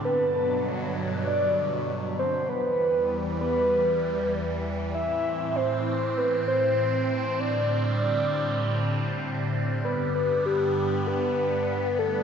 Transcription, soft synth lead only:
X:1
M:4/4
L:1/8
Q:1/4=98
K:G
V:1 name="Soft synth lead"
B B2 z d2 z c | B3 B4 z | e2 c2 B c3 | d2 d3 z3 |
B B G2 B3 A |]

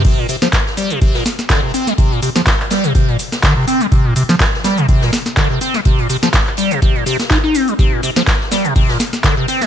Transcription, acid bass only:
X:1
M:4/4
L:1/16
Q:"Swing 16ths" 1/4=124
K:Gdor
V:1 name="Acid bass" clef=bass
z B,, C, F, z2 G, C, C, B,, z2 D, C, C G, | C, B,, C, F, z2 G, C, C, B,, z2 D, C, C G, | C, B,, C, F, z2 G, C, C, B,, z2 D, C, C G, | C, B,, C, F, z2 G, C, C, B,, C, z _E E C G, |
C, B,, C, F, z2 G, C, C, B,, z2 D, C, C G, |]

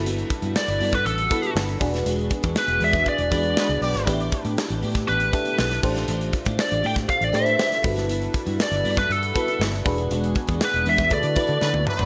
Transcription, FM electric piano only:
X:1
M:4/4
L:1/8
Q:1/4=119
K:Glyd
V:1 name="FM electric piano"
[EFAB]2 z3 [EFAB]2 [DF^GB]- | [DF^GB]2 z3 [DFGB]2 z | [DEGB]3 z2 [DEGA]2 [DGA=c]- | [DGA=c]2 z3 [DGABc]2 [EFAB]- |
[EFAB]2 z3 [EFAB]2 [DF^GB]- | [DF^GB]2 z2 [EFAB] [EFAB]2 z |]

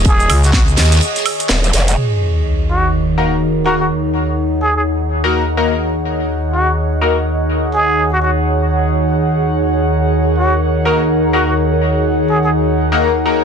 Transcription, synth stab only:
X:1
M:4/4
L:1/16
Q:"Swing 16ths" 1/4=125
K:Ebm
V:1 name="Synth stab"
z16 | z8 z2 [B,EGB] z3 [B,EGB] z | z8 z3 [B,EGB]2 z [B,EGB] z | z8 z2 [B,EGB] z4 z |
z16 | z8 z2 [B,EGB] z3 [B,EGB] z | z8 z3 [B,EGB]2 z [B,EGB] z |]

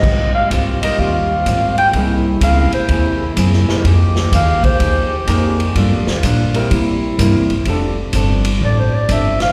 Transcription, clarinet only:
X:1
M:4/4
L:1/8
Q:"Swing" 1/4=126
K:Fm
V:1 name="Clarinet"
e f z e f3 g | z2 f c3 z2 | z2 f c3 z2 | z8 |
z4 (3=d c d =e f |]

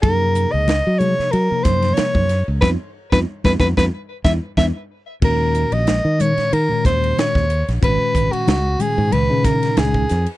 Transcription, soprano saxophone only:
X:1
M:4/4
L:1/16
Q:"Swing 16ths" 1/4=92
K:Ebdor
V:1 name="Soprano saxophone"
B3 e3 d2 B2 c2 d3 z | =B z2 B z B B B z2 =e z e z3 | B3 e3 d2 B2 c2 d3 z | _c3 G3 A2 c2 B2 A3 z |]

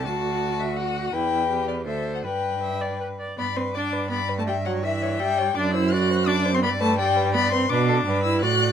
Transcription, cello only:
X:1
M:3/4
L:1/8
Q:1/4=166
K:G
V:1 name="Cello" clef=bass
D,,6 | E,,4 D,,2 | G,,4- G,, z | G,,6- |
G,,6 | F,,6 | G,,6 | [K:Bm] B,,2 G,,2 A,,2 |]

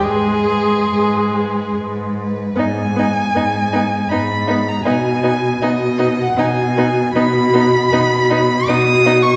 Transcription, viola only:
X:1
M:3/4
L:1/8
Q:1/4=78
K:G#m
V:1 name="Viola"
G,4- G, z | B, B, B, B, B, B, | B, B, B, B, B, B, | B, B, B, B, B, B, |]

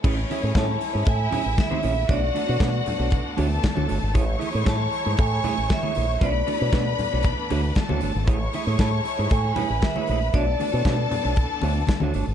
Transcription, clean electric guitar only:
X:1
M:4/4
L:1/16
Q:1/4=116
K:A
V:1 name="Clean electric guitar"
[CEGc] z [CEGe] [CEGc] [CEGc] z2 [CEGc] z2 [CEGc] z2 [CEGc] [CEGc] z | [A,DFc] z [A,DFd] [A,DFc] [A,DFc] z2 [A,DFc] z2 [A,DFc] z2 [A,DFc] [A,DFc] z | [A,EGc] z [A,EGe] [A,EGc] [A,EGc] z2 [A,EGc] z2 [A,EGc] z2 [A,EGc] [A,EGc] z | [A,DFc]2 [A,DFd] [A,DFc] [A,DFc] z2 [A,DFc] z2 [A,DFc] z2 [A,DFc] [A,DFc] z |
[A,EGc] z [A,EGe] [A,EGc] [A,EGc] z2 [A,EGc] z2 [A,EGc] z2 [A,EGc] [A,EGc] z | [A,DFc] z [A,DFd] [A,DFc] [A,DFc] z2 [A,DFc] z2 [A,DFc] z2 [A,DFc] [A,DFc] z |]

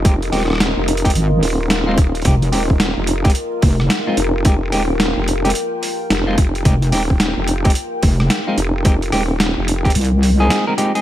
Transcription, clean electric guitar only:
X:1
M:4/4
L:1/16
Q:"Swing 16ths" 1/4=109
K:Fm
V:1 name="Clean electric guitar"
[A,CEG] z [A,CEG] z4 [A,CEG] z4 z [A,CEF] z2 | [A,CEG] z [A,CEG] z4 [A,CEG] z4 z [A,CEF] z2 | [A,CEG] z [A,CEG] z4 [A,CEG] z4 z [A,CEF] z2 | [A,CEG] z [A,CEG] z4 [A,CEG] z4 z [A,CEF] z2 |
[A,CEG] z [A,CEG] z4 [A,CEG] z3 [A,CEA]2 [A,CEB] [A,CEG] [A,CEA] |]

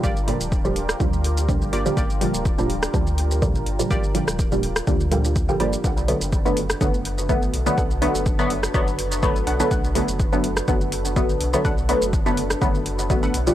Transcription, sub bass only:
X:1
M:4/4
L:1/16
Q:"Swing 16ths" 1/4=124
K:Bm
V:1 name="Sub bass" clef=bass
G,,,2 z D,,,4 z D,,4- D,, =F,,, G,,, z | G,,,2 z D,,,4 z D,,4- D,, =F,,, G,,, z | G,,,2 z D,,,4 z D,,4- D,, =F,,, G,,, z | B,,,2 z F,,,4 z F,,,4- F,,, A,,, B,,, z |
B,,,2 z F,,,4 z F,,,4- F,,, A,,, B,,, z | B,,,2 z F,,,4 z F,,,4- F,,, A,,, B,,, z | B,,,2 z F,,,4 z F,,,4- F,,, A,,, B,,, z |]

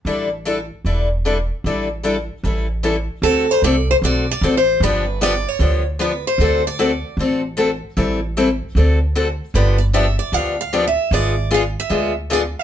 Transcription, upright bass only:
X:1
M:4/4
L:1/8
Q:"Swing" 1/4=152
K:Amix
V:1 name="Upright bass" clef=bass
A,,,4 E,,,4 | A,,,4 A,,,4 | D,,2 =C,,2 B,,,2 A,,,2 | G,,,4 D,,4 |
D,,4 A,,,4 | A,,,4 D,,4 | G,,,4 D,,4 | ^G,,,4 D,,4 |]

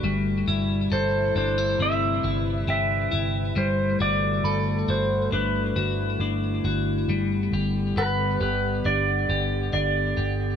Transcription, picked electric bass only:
X:1
M:4/4
L:1/8
Q:1/4=68
K:G
V:1 name="Picked electric bass" clef=bass
G,,, G,,, G,,, G,,, G,,, G,,, G,,, G,,, | G,,, G,,, G,,, G,,, G,,, G,,, G,,, G,,, | G,,, G,,, G,,, G,,, G,,, G,,, G,,, G,,, |]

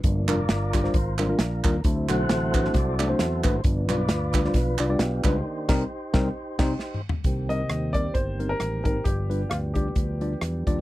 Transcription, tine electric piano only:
X:1
M:4/4
L:1/16
Q:"Swing" 1/4=133
K:Cm
V:1 name="Tine electric piano"
z2 [G,DFB] z3 [G,DFG] [G,DFc] z2 [G,DFB] [G,DFB] z2 [G,DFB] z | z2 [=A,D^Fc] z3 [A,DF=B] [A,DFc] z2 [A,DFd] [A,DFc] z2 [A,DFB] z | z2 [G,DF=B] z3 [G,DFB] [G,DFd] z2 [G,DFd] [G,DFd] z2 [G,DFB] z | z2 [G,CEB]2 z2 [G,CEB]2 z2 [G,CEc]2 z4 |
z2 [G,CEB] z3 [G,CEB] z3 [G,CEB] z3 [G,CEB] z | z2 [G,DF=B] z3 [G,DFd] z3 [G,DFd] z3 [G,DFd] z |]
V:2 name="Tine electric piano" clef=bass
G,,6 z8 z2 | D,6 z8 z2 | G,,6 z8 z2 | z16 |
C,6 z8 z2 | G,,6 z8 z2 |]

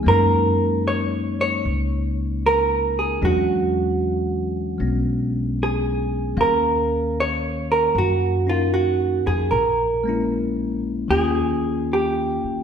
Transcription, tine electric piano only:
X:1
M:4/4
L:1/8
Q:"Swing" 1/4=76
K:Ebm
V:1 name="Tine electric piano"
[A,B,DE]8 | [^F,^G,^C=D]4 [G,=B,C]4 | [E,B,Df]4- [E,B,Df] [DEB]3 | z [A,B,D_F]3 [E,B,D=F]4 |]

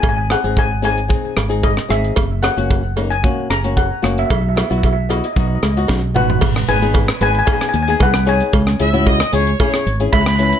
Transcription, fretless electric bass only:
X:1
M:4/4
L:1/16
Q:1/4=113
K:G#phr
V:1 name="Fretless electric bass" clef=bass
G,,,3 G,,,6- G,,, G,,,4 G,,,2 | F,,,3 F,,,6- F,,, F,,,4 F,,,2 | B,,,3 B,,,4- B,,, B,,,2 C,,2 B,,,2 A,,,2 | G,,,2 G,,,4 G,,,2 z2 D,,2 =C,,4 |
C,,2 C,,4 C,,2 z2 G,,,2 C,,4 |]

